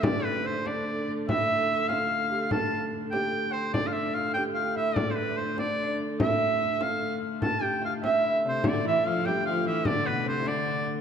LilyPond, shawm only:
\new Staff \with { instrumentName = "Shawm" } { \time 6/8 \key d \dorian \tempo 4. = 98 d''8 b'8 c''8 d''4~ d''32 r16. | e''4. f''4. | a''8.~ a''32 r8 r32 g''4 c''8 | d''16. f''32 e''8 f''8 g''8 f''8 e''8 |
d''16. c''32 b'8 c''8 d''4~ d''32 r16. | e''4. f''8.~ f''32 r8 r32 | a''8 g''8 f''8 e''4 c''8 | d''8 e''8 f''8 g''8 f''8 e''8 |
d''8 b'8 c''8 d''4~ d''32 r16. | }